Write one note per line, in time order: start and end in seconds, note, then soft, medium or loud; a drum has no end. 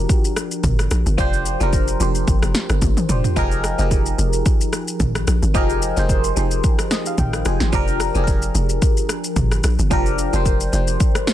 0.00 1.18 F3 loud
0.00 1.18 D4 loud
0.00 3.38 F#4 medium
0.00 1.19 G4 loud
0.00 1.63 A#4 loud
0.09 kick loud
0.09 shaker medium
0.25 shaker medium
0.36 cross-stick medium
0.36 shaker medium
0.51 shaker medium
0.64 0.88 G1 loud
0.64 kick loud
0.64 mid tom medium
0.64 shaker medium
0.79 cross-stick medium
0.79 shaker medium
0.91 1.05 A#1 medium
0.91 cross-stick loud
0.91 shaker loud
1.06 1.17 G1 medium
1.06 shaker medium
1.18 1.57 F1 loud
1.18 1.51 F3 loud
1.18 1.52 D4 loud
1.18 1.52 G4 loud
1.18 1.53 C5 loud
1.18 kick loud
1.18 shaker medium
1.33 shaker medium
1.46 shaker medium
1.60 1.96 F1 loud
1.60 1.93 F3 medium
1.60 1.93 D4 medium
1.60 1.93 G4 medium
1.60 1.94 A#4 loud
1.60 shaker soft
1.73 kick medium
1.73 shaker medium
1.88 shaker medium
2.00 2.25 F1 loud
2.00 2.88 F3 medium
2.00 2.88 D4 medium
2.00 2.89 G4 medium
2.00 2.89 C5 medium
2.00 shaker medium
2.15 shaker medium
2.28 2.41 G1 loud
2.28 kick loud
2.28 shaker medium
2.42 2.54 F1 medium
2.42 cross-stick loud
2.42 shaker medium
2.55 cross-stick medium
2.55 snare medium
2.55 shaker medium
2.70 2.81 G1 medium
2.70 cross-stick medium
2.70 shaker medium
2.82 2.95 G1 loud
2.82 kick loud
2.82 high tom medium
2.82 shaker medium
2.97 mid tom medium
2.97 shaker medium
3.09 3.23 F1 medium
3.09 3.31 F3 medium
3.09 3.32 D4 medium
3.09 3.32 G4 medium
3.09 3.33 C5 medium
3.09 mid tom medium
3.09 shaker loud
3.24 floor tom medium
3.24 shaker medium
3.36 3.75 F1 loud
3.36 3.70 F3 loud
3.36 3.70 D#4 loud
3.36 3.70 G4 loud
3.36 3.71 G#4 loud
3.36 3.71 A#4 loud
3.36 kick loud
3.36 shaker medium
3.52 shaker medium
3.64 cross-stick loud
3.64 shaker medium
3.78 4.14 F1 medium
3.78 4.65 F3 medium
3.78 4.66 D#4 medium
3.78 4.66 G4 medium
3.78 4.66 G#4 medium
3.78 4.67 A#4 medium
3.78 shaker soft
3.91 kick medium
3.91 shaker medium
4.06 shaker medium
4.18 4.43 F1 medium
4.18 shaker medium
4.33 shaker medium
4.46 kick loud
4.46 shaker medium
4.61 shaker medium
4.73 cross-stick medium
4.73 shaker medium
4.88 shaker medium
5.00 5.25 G#1 loud
5.00 kick loud
5.00 mid tom medium
5.00 shaker medium
5.15 cross-stick medium
5.15 shaker medium
5.27 5.41 A#1 medium
5.27 cross-stick loud
5.27 shaker loud
5.42 5.56 G#1 loud
5.42 shaker medium
5.54 5.93 F1 loud
5.54 5.88 F3 loud
5.54 5.88 D#4 loud
5.54 5.88 G4 loud
5.54 5.89 G#4 loud
5.54 5.89 A#4 loud
5.54 kick loud
5.54 shaker medium
5.70 shaker soft
5.82 shaker medium
5.96 6.33 F1 medium
5.96 6.29 F3 medium
5.96 6.29 D#4 medium
5.96 6.30 G4 medium
5.96 6.30 G#4 medium
5.96 6.30 C5 loud
5.96 shaker soft
6.09 kick medium
6.09 shaker medium
6.24 shaker medium
6.36 6.61 F1 loud
6.36 7.24 F3 medium
6.36 7.24 D#4 medium
6.36 7.25 G4 medium
6.36 7.25 G#4 medium
6.36 7.25 C5 medium
6.36 shaker medium
6.51 shaker medium
6.64 kick loud
6.64 shaker medium
6.79 cross-stick loud
6.79 shaker medium
6.91 7.05 D#5 medium
6.91 cross-stick medium
6.91 snare medium
6.91 shaker medium
7.06 7.18 F5 medium
7.06 shaker medium
7.18 7.43 G#1 medium
7.18 7.44 G5 medium
7.18 kick loud
7.18 mid tom loud
7.18 shaker medium
7.33 cross-stick medium
7.33 shaker medium
7.45 7.59 F1 loud
7.45 7.68 F3 medium
7.45 7.68 D#4 medium
7.45 7.68 G4 medium
7.45 7.69 G#4 medium
7.45 7.69 C5 medium
7.45 7.71 G#5 medium
7.45 cross-stick loud
7.45 shaker loud
7.60 7.72 G#1 medium
7.60 snare medium
7.60 shaker medium
7.72 8.11 F1 loud
7.72 8.06 F3 loud
7.72 8.06 D4 loud
7.72 8.07 G4 loud
7.72 8.07 A#4 loud
7.72 kick loud
7.72 shaker medium
7.88 shaker medium
8.00 cross-stick loud
8.00 shaker medium
8.14 8.51 F1 loud
8.14 9.02 F3 medium
8.14 9.02 D4 medium
8.14 9.02 G4 medium
8.14 8.22 G#4 medium
8.14 shaker soft
8.24 9.06 A#4 loud
8.24 kick medium
8.24 shaker medium
8.42 shaker medium
8.55 8.79 F1 loud
8.55 shaker medium
8.69 shaker medium
8.82 kick loud
8.82 shaker medium
8.97 shaker medium
9.09 cross-stick medium
9.09 shaker medium
9.24 shaker medium
9.36 9.61 G1 loud
9.36 kick loud
9.36 mid tom loud
9.36 shaker medium
9.52 cross-stick medium
9.52 shaker medium
9.64 9.77 A#1 medium
9.64 cross-stick loud
9.64 shaker loud
9.79 9.90 G1 medium
9.79 shaker medium
9.90 10.29 F1 loud
9.90 10.24 F3 loud
9.90 10.24 D4 loud
9.90 10.25 G4 loud
9.90 10.25 A#4 loud
9.90 kick loud
9.90 shaker medium
10.06 shaker medium
10.18 shaker medium
10.33 10.69 F1 loud
10.33 10.65 F3 medium
10.33 10.66 D4 medium
10.33 10.66 G4 medium
10.33 10.67 C5 loud
10.33 shaker soft
10.46 kick medium
10.46 shaker medium
10.60 shaker medium
10.72 10.97 F1 medium
10.72 11.33 F3 medium
10.72 11.33 D4 medium
10.72 11.33 G4 medium
10.72 11.33 C5 medium
10.72 shaker medium
10.87 shaker medium
11.00 kick loud
11.00 shaker medium
11.15 cross-stick loud
11.15 shaker medium
11.27 cross-stick medium
11.27 snare medium
11.27 shaker medium